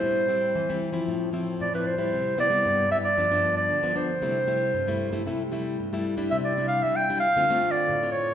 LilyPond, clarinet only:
\new Staff \with { instrumentName = "Clarinet" } { \time 4/4 \key c \major \tempo 4 = 115 c''2~ c''8 r8 d''16 b'16 c''8~ | c''8 d''4 e''16 d''4 d''8. c''8~ | c''2. r4 | e''16 d''8 f''16 e''16 g''8 f''4 d''8. des''8 | }